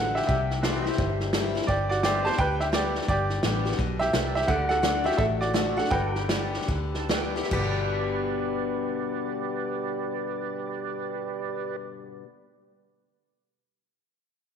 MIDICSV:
0, 0, Header, 1, 7, 480
1, 0, Start_track
1, 0, Key_signature, 1, "major"
1, 0, Tempo, 349447
1, 400, Time_signature, 4, 2, 24, 8
1, 7120, Tempo, 375000
1, 9040, Tempo, 416956
1, 10000, Tempo, 435730
1, 17754, End_track
2, 0, Start_track
2, 0, Title_t, "Upright piano"
2, 0, Program_c, 0, 0
2, 0, Note_on_c, 0, 69, 65
2, 0, Note_on_c, 0, 78, 90
2, 204, Note_off_c, 0, 69, 0
2, 206, Note_on_c, 0, 76, 82
2, 224, Note_off_c, 0, 78, 0
2, 230, Note_on_c, 0, 67, 61
2, 353, Note_off_c, 0, 76, 0
2, 372, Note_off_c, 0, 67, 0
2, 373, Note_on_c, 0, 76, 78
2, 393, Note_on_c, 0, 67, 64
2, 1290, Note_off_c, 0, 76, 0
2, 1300, Note_off_c, 0, 67, 0
2, 2296, Note_on_c, 0, 74, 84
2, 2323, Note_on_c, 0, 67, 68
2, 2580, Note_off_c, 0, 74, 0
2, 2600, Note_off_c, 0, 67, 0
2, 2600, Note_on_c, 0, 74, 82
2, 2622, Note_on_c, 0, 66, 65
2, 2772, Note_off_c, 0, 74, 0
2, 2786, Note_off_c, 0, 66, 0
2, 2792, Note_on_c, 0, 74, 87
2, 2811, Note_on_c, 0, 67, 66
2, 3075, Note_off_c, 0, 74, 0
2, 3085, Note_off_c, 0, 67, 0
2, 3087, Note_on_c, 0, 81, 90
2, 3107, Note_on_c, 0, 72, 70
2, 3268, Note_off_c, 0, 72, 0
2, 3276, Note_off_c, 0, 81, 0
2, 3278, Note_on_c, 0, 79, 101
2, 3299, Note_on_c, 0, 71, 78
2, 3558, Note_off_c, 0, 79, 0
2, 3569, Note_off_c, 0, 71, 0
2, 3577, Note_on_c, 0, 76, 81
2, 3603, Note_on_c, 0, 67, 66
2, 3646, Note_off_c, 0, 76, 0
2, 3672, Note_off_c, 0, 67, 0
2, 3762, Note_on_c, 0, 74, 81
2, 3787, Note_on_c, 0, 67, 63
2, 4219, Note_off_c, 0, 67, 0
2, 4219, Note_off_c, 0, 74, 0
2, 4239, Note_on_c, 0, 74, 83
2, 4260, Note_on_c, 0, 67, 68
2, 5141, Note_off_c, 0, 74, 0
2, 5152, Note_off_c, 0, 67, 0
2, 5487, Note_on_c, 0, 76, 98
2, 5502, Note_on_c, 0, 67, 70
2, 5937, Note_off_c, 0, 76, 0
2, 5945, Note_off_c, 0, 67, 0
2, 5979, Note_on_c, 0, 76, 86
2, 5996, Note_on_c, 0, 67, 68
2, 6152, Note_off_c, 0, 67, 0
2, 6153, Note_on_c, 0, 78, 86
2, 6160, Note_off_c, 0, 76, 0
2, 6170, Note_on_c, 0, 69, 68
2, 6421, Note_off_c, 0, 78, 0
2, 6441, Note_on_c, 0, 78, 91
2, 6443, Note_off_c, 0, 69, 0
2, 6468, Note_on_c, 0, 69, 74
2, 6898, Note_off_c, 0, 78, 0
2, 6912, Note_off_c, 0, 69, 0
2, 6944, Note_on_c, 0, 76, 86
2, 6950, Note_on_c, 0, 67, 66
2, 7088, Note_off_c, 0, 76, 0
2, 7109, Note_on_c, 0, 76, 90
2, 7113, Note_off_c, 0, 67, 0
2, 7121, Note_on_c, 0, 69, 75
2, 7176, Note_off_c, 0, 76, 0
2, 7186, Note_off_c, 0, 69, 0
2, 7406, Note_on_c, 0, 74, 84
2, 7415, Note_on_c, 0, 66, 61
2, 7842, Note_off_c, 0, 74, 0
2, 7848, Note_off_c, 0, 66, 0
2, 7877, Note_on_c, 0, 78, 85
2, 7890, Note_on_c, 0, 69, 64
2, 8041, Note_off_c, 0, 78, 0
2, 8045, Note_on_c, 0, 79, 83
2, 8048, Note_off_c, 0, 69, 0
2, 8055, Note_on_c, 0, 71, 59
2, 9460, Note_off_c, 0, 79, 0
2, 9465, Note_off_c, 0, 71, 0
2, 17754, End_track
3, 0, Start_track
3, 0, Title_t, "Tonewheel organ"
3, 0, Program_c, 1, 16
3, 2787, Note_on_c, 1, 67, 71
3, 2797, Note_on_c, 1, 71, 63
3, 2805, Note_on_c, 1, 74, 71
3, 3134, Note_off_c, 1, 67, 0
3, 3139, Note_off_c, 1, 71, 0
3, 3143, Note_off_c, 1, 74, 0
3, 3753, Note_on_c, 1, 67, 68
3, 3757, Note_on_c, 1, 71, 60
3, 3769, Note_on_c, 1, 74, 77
3, 4096, Note_off_c, 1, 67, 0
3, 4098, Note_off_c, 1, 71, 0
3, 4104, Note_off_c, 1, 74, 0
3, 4730, Note_on_c, 1, 67, 68
3, 4741, Note_on_c, 1, 71, 66
3, 4744, Note_on_c, 1, 74, 79
3, 5064, Note_off_c, 1, 67, 0
3, 5070, Note_off_c, 1, 71, 0
3, 5071, Note_off_c, 1, 74, 0
3, 5675, Note_on_c, 1, 67, 63
3, 5688, Note_on_c, 1, 71, 64
3, 5693, Note_on_c, 1, 74, 75
3, 6016, Note_off_c, 1, 67, 0
3, 6023, Note_off_c, 1, 71, 0
3, 6025, Note_off_c, 1, 74, 0
3, 6631, Note_on_c, 1, 66, 66
3, 6641, Note_on_c, 1, 69, 69
3, 6648, Note_on_c, 1, 74, 71
3, 6979, Note_off_c, 1, 66, 0
3, 6983, Note_off_c, 1, 69, 0
3, 6987, Note_off_c, 1, 74, 0
3, 7571, Note_on_c, 1, 66, 68
3, 7574, Note_on_c, 1, 69, 60
3, 7580, Note_on_c, 1, 74, 76
3, 7911, Note_off_c, 1, 66, 0
3, 7913, Note_off_c, 1, 69, 0
3, 7916, Note_off_c, 1, 74, 0
3, 8542, Note_on_c, 1, 67, 70
3, 8553, Note_on_c, 1, 71, 63
3, 8557, Note_on_c, 1, 74, 77
3, 8896, Note_off_c, 1, 67, 0
3, 8902, Note_off_c, 1, 71, 0
3, 8904, Note_off_c, 1, 74, 0
3, 9339, Note_on_c, 1, 81, 70
3, 9501, Note_off_c, 1, 81, 0
3, 9511, Note_on_c, 1, 67, 75
3, 9512, Note_on_c, 1, 79, 62
3, 9516, Note_on_c, 1, 71, 74
3, 9526, Note_on_c, 1, 74, 90
3, 9795, Note_off_c, 1, 79, 0
3, 9819, Note_on_c, 1, 76, 64
3, 9858, Note_off_c, 1, 67, 0
3, 9860, Note_off_c, 1, 71, 0
3, 9865, Note_off_c, 1, 74, 0
3, 9989, Note_off_c, 1, 76, 0
3, 10002, Note_on_c, 1, 67, 82
3, 10002, Note_on_c, 1, 71, 71
3, 10002, Note_on_c, 1, 74, 91
3, 14678, Note_off_c, 1, 67, 0
3, 14678, Note_off_c, 1, 74, 0
3, 14679, Note_off_c, 1, 71, 0
3, 17754, End_track
4, 0, Start_track
4, 0, Title_t, "Pedal steel guitar"
4, 0, Program_c, 2, 26
4, 0, Note_on_c, 2, 66, 68
4, 0, Note_on_c, 2, 69, 63
4, 0, Note_on_c, 2, 74, 61
4, 373, Note_off_c, 2, 66, 0
4, 380, Note_off_c, 2, 69, 0
4, 391, Note_off_c, 2, 74, 0
4, 864, Note_on_c, 2, 66, 66
4, 880, Note_on_c, 2, 72, 73
4, 887, Note_on_c, 2, 74, 70
4, 1139, Note_off_c, 2, 66, 0
4, 1139, Note_on_c, 2, 67, 66
4, 1230, Note_off_c, 2, 74, 0
4, 1230, Note_on_c, 2, 76, 70
4, 2295, Note_off_c, 2, 67, 0
4, 2303, Note_off_c, 2, 72, 0
4, 2307, Note_off_c, 2, 76, 0
4, 2820, Note_on_c, 2, 67, 64
4, 2832, Note_on_c, 2, 72, 68
4, 2844, Note_on_c, 2, 76, 70
4, 3106, Note_off_c, 2, 72, 0
4, 3106, Note_on_c, 2, 71, 68
4, 3187, Note_off_c, 2, 76, 0
4, 3187, Note_on_c, 2, 74, 70
4, 6131, Note_off_c, 2, 67, 0
4, 6137, Note_off_c, 2, 71, 0
4, 6143, Note_off_c, 2, 74, 0
4, 6147, Note_on_c, 2, 67, 60
4, 6155, Note_on_c, 2, 71, 64
4, 6181, Note_on_c, 2, 74, 61
4, 6361, Note_off_c, 2, 71, 0
4, 6361, Note_on_c, 2, 70, 64
4, 6422, Note_off_c, 2, 67, 0
4, 6422, Note_on_c, 2, 66, 60
4, 6512, Note_off_c, 2, 70, 0
4, 6512, Note_on_c, 2, 69, 64
4, 8033, Note_off_c, 2, 66, 0
4, 8036, Note_off_c, 2, 69, 0
4, 8048, Note_off_c, 2, 74, 0
4, 8056, Note_on_c, 2, 66, 64
4, 8072, Note_on_c, 2, 69, 65
4, 8082, Note_on_c, 2, 74, 68
4, 8290, Note_off_c, 2, 69, 0
4, 8290, Note_on_c, 2, 70, 65
4, 8350, Note_off_c, 2, 66, 0
4, 8350, Note_on_c, 2, 67, 64
4, 8443, Note_off_c, 2, 70, 0
4, 8443, Note_on_c, 2, 71, 65
4, 9983, Note_off_c, 2, 67, 0
4, 9990, Note_off_c, 2, 71, 0
4, 9994, Note_off_c, 2, 74, 0
4, 10011, Note_on_c, 2, 67, 61
4, 10017, Note_on_c, 2, 71, 62
4, 10032, Note_on_c, 2, 74, 68
4, 14683, Note_off_c, 2, 67, 0
4, 14686, Note_off_c, 2, 71, 0
4, 14694, Note_off_c, 2, 74, 0
4, 17754, End_track
5, 0, Start_track
5, 0, Title_t, "Steel-string acoustic guitar"
5, 0, Program_c, 3, 25
5, 0, Note_on_c, 3, 50, 82
5, 375, Note_off_c, 3, 50, 0
5, 400, Note_on_c, 3, 48, 85
5, 876, Note_on_c, 3, 52, 56
5, 882, Note_on_c, 3, 55, 65
5, 895, Note_on_c, 3, 60, 66
5, 899, Note_on_c, 3, 64, 66
5, 1166, Note_off_c, 3, 64, 0
5, 1167, Note_off_c, 3, 52, 0
5, 1170, Note_off_c, 3, 55, 0
5, 1176, Note_off_c, 3, 60, 0
5, 1183, Note_on_c, 3, 64, 53
5, 1219, Note_on_c, 3, 60, 48
5, 1323, Note_off_c, 3, 48, 0
5, 1353, Note_off_c, 3, 64, 0
5, 1356, Note_on_c, 3, 43, 77
5, 1371, Note_off_c, 3, 60, 0
5, 1836, Note_on_c, 3, 52, 56
5, 1854, Note_on_c, 3, 55, 55
5, 1859, Note_on_c, 3, 60, 62
5, 1869, Note_on_c, 3, 64, 64
5, 2113, Note_off_c, 3, 64, 0
5, 2126, Note_off_c, 3, 52, 0
5, 2129, Note_on_c, 3, 64, 53
5, 2136, Note_off_c, 3, 55, 0
5, 2138, Note_off_c, 3, 60, 0
5, 2158, Note_on_c, 3, 60, 43
5, 2281, Note_off_c, 3, 43, 0
5, 2305, Note_off_c, 3, 64, 0
5, 2316, Note_on_c, 3, 43, 81
5, 2319, Note_off_c, 3, 60, 0
5, 2792, Note_on_c, 3, 50, 55
5, 2800, Note_on_c, 3, 55, 64
5, 2807, Note_on_c, 3, 59, 63
5, 2815, Note_on_c, 3, 67, 65
5, 3072, Note_off_c, 3, 67, 0
5, 3084, Note_off_c, 3, 50, 0
5, 3088, Note_off_c, 3, 55, 0
5, 3089, Note_on_c, 3, 67, 51
5, 3091, Note_off_c, 3, 59, 0
5, 3116, Note_on_c, 3, 59, 46
5, 3240, Note_off_c, 3, 43, 0
5, 3264, Note_off_c, 3, 67, 0
5, 3272, Note_on_c, 3, 50, 85
5, 3278, Note_off_c, 3, 59, 0
5, 3721, Note_off_c, 3, 50, 0
5, 3738, Note_on_c, 3, 50, 57
5, 3746, Note_on_c, 3, 55, 61
5, 3756, Note_on_c, 3, 59, 59
5, 3763, Note_on_c, 3, 67, 58
5, 4208, Note_off_c, 3, 50, 0
5, 4213, Note_off_c, 3, 55, 0
5, 4217, Note_off_c, 3, 59, 0
5, 4221, Note_off_c, 3, 67, 0
5, 4245, Note_on_c, 3, 43, 83
5, 4712, Note_on_c, 3, 50, 65
5, 4722, Note_on_c, 3, 55, 69
5, 4727, Note_on_c, 3, 59, 63
5, 4731, Note_on_c, 3, 67, 61
5, 5003, Note_off_c, 3, 50, 0
5, 5004, Note_off_c, 3, 67, 0
5, 5008, Note_off_c, 3, 55, 0
5, 5010, Note_off_c, 3, 59, 0
5, 5020, Note_on_c, 3, 67, 54
5, 5052, Note_on_c, 3, 59, 46
5, 5163, Note_off_c, 3, 43, 0
5, 5189, Note_off_c, 3, 67, 0
5, 5205, Note_off_c, 3, 59, 0
5, 5210, Note_on_c, 3, 47, 78
5, 5664, Note_off_c, 3, 47, 0
5, 5681, Note_on_c, 3, 48, 83
5, 6139, Note_off_c, 3, 48, 0
5, 6162, Note_on_c, 3, 50, 90
5, 6608, Note_off_c, 3, 50, 0
5, 6624, Note_on_c, 3, 50, 58
5, 6635, Note_on_c, 3, 57, 69
5, 6639, Note_on_c, 3, 62, 74
5, 6654, Note_on_c, 3, 66, 71
5, 6905, Note_off_c, 3, 66, 0
5, 6921, Note_on_c, 3, 66, 55
5, 6922, Note_off_c, 3, 50, 0
5, 6927, Note_off_c, 3, 57, 0
5, 6930, Note_off_c, 3, 62, 0
5, 6955, Note_on_c, 3, 62, 44
5, 7104, Note_off_c, 3, 66, 0
5, 7121, Note_off_c, 3, 62, 0
5, 7121, Note_on_c, 3, 45, 77
5, 7570, Note_on_c, 3, 50, 63
5, 7576, Note_on_c, 3, 57, 60
5, 7589, Note_on_c, 3, 62, 64
5, 7595, Note_on_c, 3, 66, 71
5, 7850, Note_off_c, 3, 66, 0
5, 7859, Note_off_c, 3, 50, 0
5, 7862, Note_off_c, 3, 57, 0
5, 7866, Note_on_c, 3, 66, 64
5, 7869, Note_off_c, 3, 62, 0
5, 7895, Note_on_c, 3, 62, 52
5, 8018, Note_off_c, 3, 45, 0
5, 8041, Note_off_c, 3, 66, 0
5, 8043, Note_on_c, 3, 43, 80
5, 8055, Note_off_c, 3, 62, 0
5, 8535, Note_on_c, 3, 50, 57
5, 8547, Note_on_c, 3, 55, 59
5, 8557, Note_on_c, 3, 59, 66
5, 8563, Note_on_c, 3, 67, 67
5, 8998, Note_off_c, 3, 43, 0
5, 9020, Note_off_c, 3, 50, 0
5, 9026, Note_off_c, 3, 55, 0
5, 9031, Note_off_c, 3, 59, 0
5, 9034, Note_off_c, 3, 67, 0
5, 9041, Note_on_c, 3, 50, 82
5, 9491, Note_off_c, 3, 50, 0
5, 9504, Note_on_c, 3, 50, 58
5, 9516, Note_on_c, 3, 55, 57
5, 9519, Note_on_c, 3, 59, 68
5, 9529, Note_on_c, 3, 67, 64
5, 9800, Note_off_c, 3, 50, 0
5, 9803, Note_off_c, 3, 67, 0
5, 9806, Note_off_c, 3, 55, 0
5, 9808, Note_off_c, 3, 59, 0
5, 9817, Note_on_c, 3, 67, 60
5, 9841, Note_on_c, 3, 59, 46
5, 9991, Note_on_c, 3, 43, 81
5, 9994, Note_off_c, 3, 67, 0
5, 10000, Note_on_c, 3, 47, 78
5, 10005, Note_off_c, 3, 59, 0
5, 10008, Note_on_c, 3, 50, 80
5, 10014, Note_on_c, 3, 55, 82
5, 10020, Note_on_c, 3, 59, 97
5, 10027, Note_on_c, 3, 67, 83
5, 15187, Note_off_c, 3, 43, 0
5, 15196, Note_off_c, 3, 47, 0
5, 15204, Note_off_c, 3, 50, 0
5, 15210, Note_off_c, 3, 55, 0
5, 15216, Note_off_c, 3, 59, 0
5, 15223, Note_off_c, 3, 67, 0
5, 17754, End_track
6, 0, Start_track
6, 0, Title_t, "Fingered electric bass"
6, 0, Program_c, 4, 33
6, 0, Note_on_c, 4, 33, 74
6, 262, Note_off_c, 4, 33, 0
6, 396, Note_on_c, 4, 36, 89
6, 1219, Note_off_c, 4, 36, 0
6, 1353, Note_on_c, 4, 31, 78
6, 2176, Note_off_c, 4, 31, 0
6, 2315, Note_on_c, 4, 31, 92
6, 3137, Note_off_c, 4, 31, 0
6, 3280, Note_on_c, 4, 38, 75
6, 4099, Note_off_c, 4, 38, 0
6, 4240, Note_on_c, 4, 31, 84
6, 4649, Note_off_c, 4, 31, 0
6, 4729, Note_on_c, 4, 33, 89
6, 5131, Note_off_c, 4, 33, 0
6, 5202, Note_on_c, 4, 35, 75
6, 5606, Note_off_c, 4, 35, 0
6, 5688, Note_on_c, 4, 36, 80
6, 6089, Note_off_c, 4, 36, 0
6, 6165, Note_on_c, 4, 38, 88
6, 6988, Note_off_c, 4, 38, 0
6, 7122, Note_on_c, 4, 33, 75
6, 7921, Note_off_c, 4, 33, 0
6, 8056, Note_on_c, 4, 31, 89
6, 8900, Note_off_c, 4, 31, 0
6, 9043, Note_on_c, 4, 38, 75
6, 9863, Note_off_c, 4, 38, 0
6, 10000, Note_on_c, 4, 31, 86
6, 15152, Note_off_c, 4, 31, 0
6, 17754, End_track
7, 0, Start_track
7, 0, Title_t, "Drums"
7, 222, Note_on_c, 9, 38, 32
7, 301, Note_off_c, 9, 38, 0
7, 301, Note_on_c, 9, 38, 33
7, 392, Note_off_c, 9, 38, 0
7, 392, Note_on_c, 9, 38, 34
7, 394, Note_on_c, 9, 36, 109
7, 530, Note_off_c, 9, 38, 0
7, 532, Note_off_c, 9, 36, 0
7, 695, Note_on_c, 9, 38, 34
7, 832, Note_off_c, 9, 38, 0
7, 871, Note_on_c, 9, 38, 108
7, 871, Note_on_c, 9, 44, 83
7, 1008, Note_off_c, 9, 38, 0
7, 1008, Note_off_c, 9, 44, 0
7, 1176, Note_on_c, 9, 38, 34
7, 1264, Note_off_c, 9, 38, 0
7, 1264, Note_on_c, 9, 38, 34
7, 1348, Note_off_c, 9, 38, 0
7, 1348, Note_on_c, 9, 38, 36
7, 1353, Note_on_c, 9, 36, 108
7, 1485, Note_off_c, 9, 38, 0
7, 1490, Note_off_c, 9, 36, 0
7, 1651, Note_on_c, 9, 38, 35
7, 1788, Note_off_c, 9, 38, 0
7, 1828, Note_on_c, 9, 38, 118
7, 1828, Note_on_c, 9, 44, 88
7, 1965, Note_off_c, 9, 38, 0
7, 1965, Note_off_c, 9, 44, 0
7, 2138, Note_on_c, 9, 38, 34
7, 2223, Note_off_c, 9, 38, 0
7, 2223, Note_on_c, 9, 38, 33
7, 2312, Note_off_c, 9, 38, 0
7, 2312, Note_on_c, 9, 38, 32
7, 2314, Note_on_c, 9, 36, 98
7, 2449, Note_off_c, 9, 38, 0
7, 2451, Note_off_c, 9, 36, 0
7, 2618, Note_on_c, 9, 38, 32
7, 2756, Note_off_c, 9, 38, 0
7, 2794, Note_on_c, 9, 38, 95
7, 2794, Note_on_c, 9, 44, 76
7, 2931, Note_off_c, 9, 38, 0
7, 2931, Note_off_c, 9, 44, 0
7, 3100, Note_on_c, 9, 38, 29
7, 3193, Note_off_c, 9, 38, 0
7, 3193, Note_on_c, 9, 38, 34
7, 3272, Note_off_c, 9, 38, 0
7, 3272, Note_on_c, 9, 38, 33
7, 3277, Note_on_c, 9, 36, 104
7, 3409, Note_off_c, 9, 38, 0
7, 3414, Note_off_c, 9, 36, 0
7, 3571, Note_on_c, 9, 38, 35
7, 3708, Note_off_c, 9, 38, 0
7, 3749, Note_on_c, 9, 38, 104
7, 3749, Note_on_c, 9, 44, 83
7, 3886, Note_off_c, 9, 38, 0
7, 3886, Note_off_c, 9, 44, 0
7, 4053, Note_on_c, 9, 38, 35
7, 4137, Note_off_c, 9, 38, 0
7, 4137, Note_on_c, 9, 38, 32
7, 4229, Note_off_c, 9, 38, 0
7, 4229, Note_on_c, 9, 38, 31
7, 4237, Note_on_c, 9, 36, 109
7, 4366, Note_off_c, 9, 38, 0
7, 4375, Note_off_c, 9, 36, 0
7, 4528, Note_on_c, 9, 38, 32
7, 4666, Note_off_c, 9, 38, 0
7, 4711, Note_on_c, 9, 38, 104
7, 4711, Note_on_c, 9, 44, 83
7, 4848, Note_off_c, 9, 38, 0
7, 4848, Note_off_c, 9, 44, 0
7, 5021, Note_on_c, 9, 38, 31
7, 5105, Note_off_c, 9, 38, 0
7, 5105, Note_on_c, 9, 38, 35
7, 5198, Note_off_c, 9, 38, 0
7, 5198, Note_on_c, 9, 38, 33
7, 5203, Note_on_c, 9, 36, 96
7, 5335, Note_off_c, 9, 38, 0
7, 5340, Note_off_c, 9, 36, 0
7, 5505, Note_on_c, 9, 38, 32
7, 5642, Note_off_c, 9, 38, 0
7, 5680, Note_on_c, 9, 38, 110
7, 5680, Note_on_c, 9, 44, 92
7, 5817, Note_off_c, 9, 38, 0
7, 5817, Note_off_c, 9, 44, 0
7, 5985, Note_on_c, 9, 38, 37
7, 6069, Note_off_c, 9, 38, 0
7, 6069, Note_on_c, 9, 38, 35
7, 6154, Note_off_c, 9, 38, 0
7, 6154, Note_on_c, 9, 38, 32
7, 6158, Note_on_c, 9, 36, 106
7, 6291, Note_off_c, 9, 38, 0
7, 6296, Note_off_c, 9, 36, 0
7, 6456, Note_on_c, 9, 38, 36
7, 6593, Note_off_c, 9, 38, 0
7, 6637, Note_on_c, 9, 38, 103
7, 6637, Note_on_c, 9, 44, 83
7, 6774, Note_off_c, 9, 38, 0
7, 6774, Note_off_c, 9, 44, 0
7, 6936, Note_on_c, 9, 38, 29
7, 7027, Note_off_c, 9, 38, 0
7, 7027, Note_on_c, 9, 38, 35
7, 7121, Note_off_c, 9, 38, 0
7, 7121, Note_on_c, 9, 38, 34
7, 7122, Note_on_c, 9, 36, 114
7, 7249, Note_off_c, 9, 38, 0
7, 7250, Note_off_c, 9, 36, 0
7, 7410, Note_on_c, 9, 38, 32
7, 7538, Note_off_c, 9, 38, 0
7, 7581, Note_on_c, 9, 38, 116
7, 7581, Note_on_c, 9, 44, 84
7, 7709, Note_off_c, 9, 38, 0
7, 7709, Note_off_c, 9, 44, 0
7, 7881, Note_on_c, 9, 38, 36
7, 7969, Note_off_c, 9, 38, 0
7, 7969, Note_on_c, 9, 38, 32
7, 8051, Note_off_c, 9, 38, 0
7, 8051, Note_on_c, 9, 38, 34
7, 8053, Note_on_c, 9, 36, 109
7, 8179, Note_off_c, 9, 38, 0
7, 8181, Note_off_c, 9, 36, 0
7, 8363, Note_on_c, 9, 38, 34
7, 8491, Note_off_c, 9, 38, 0
7, 8539, Note_on_c, 9, 38, 107
7, 8539, Note_on_c, 9, 44, 86
7, 8667, Note_off_c, 9, 38, 0
7, 8667, Note_off_c, 9, 44, 0
7, 8853, Note_on_c, 9, 38, 30
7, 8951, Note_off_c, 9, 38, 0
7, 8951, Note_on_c, 9, 38, 35
7, 9041, Note_on_c, 9, 36, 99
7, 9043, Note_off_c, 9, 38, 0
7, 9043, Note_on_c, 9, 38, 34
7, 9157, Note_off_c, 9, 36, 0
7, 9158, Note_off_c, 9, 38, 0
7, 9338, Note_on_c, 9, 38, 32
7, 9453, Note_off_c, 9, 38, 0
7, 9514, Note_on_c, 9, 38, 116
7, 9514, Note_on_c, 9, 44, 81
7, 9629, Note_off_c, 9, 38, 0
7, 9629, Note_off_c, 9, 44, 0
7, 9819, Note_on_c, 9, 38, 37
7, 9903, Note_off_c, 9, 38, 0
7, 9903, Note_on_c, 9, 38, 32
7, 9992, Note_on_c, 9, 49, 80
7, 9996, Note_on_c, 9, 36, 91
7, 10018, Note_off_c, 9, 38, 0
7, 10103, Note_off_c, 9, 49, 0
7, 10107, Note_off_c, 9, 36, 0
7, 17754, End_track
0, 0, End_of_file